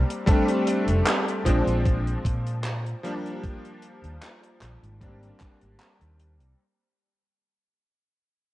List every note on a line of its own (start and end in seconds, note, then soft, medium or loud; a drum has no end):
0.00 0.20 G3 medium
0.00 0.20 A#3 medium
0.00 0.21 C4 medium
0.00 0.21 D4 medium
0.10 closed hi-hat medium
0.26 1.38 G3 medium
0.26 1.38 A3 medium
0.26 1.39 C4 medium
0.26 1.39 D4 medium
0.26 kick loud
0.26 closed hi-hat medium
0.48 closed hi-hat medium
0.67 closed hi-hat medium
0.88 0.99 F1 medium
0.88 closed hi-hat medium
1.07 clap loud
1.07 closed hi-hat medium
1.28 closed hi-hat soft
1.45 1.59 A#1 medium
1.45 2.96 F3 medium
1.45 2.97 G#3 medium
1.45 2.97 C4 medium
1.45 2.98 D4 medium
1.45 kick medium
1.45 closed hi-hat loud
1.67 2.13 A#1 medium
1.67 closed hi-hat soft
1.86 kick loud
1.86 closed hi-hat medium
2.07 closed hi-hat soft
2.25 2.92 A#2 medium
2.25 kick loud
2.25 closed hi-hat medium
2.47 closed hi-hat medium
2.64 clap loud
2.64 closed hi-hat medium
2.86 closed hi-hat medium
3.03 4.94 F3 medium
3.03 4.94 G3 medium
3.03 4.94 A#3 medium
3.03 4.95 D4 loud
3.03 closed hi-hat loud
3.26 closed hi-hat medium
3.43 kick loud
3.43 closed hi-hat medium
3.65 closed hi-hat medium
3.82 closed hi-hat medium
4.04 4.15 D#2 medium
4.04 closed hi-hat medium
4.22 clap loud
4.22 closed hi-hat medium
4.43 closed hi-hat medium
4.61 4.75 A#1 medium
4.61 clap medium
4.61 closed hi-hat medium
4.83 5.29 G#1 loud
4.83 closed hi-hat soft
5.01 6.52 G3 medium
5.01 6.52 A#3 medium
5.01 6.52 C4 medium
5.01 6.53 D4 medium
5.01 kick loud
5.01 closed hi-hat medium
5.23 closed hi-hat medium
5.40 kick loud
5.40 clap medium
5.40 closed hi-hat loud
5.61 5.73 G#1 medium
5.61 closed hi-hat soft
5.80 clap loud
5.80 closed hi-hat medium
6.01 6.41 D#2 medium
6.01 closed hi-hat medium
6.20 closed hi-hat medium
6.40 6.52 C2 medium
6.40 closed hi-hat medium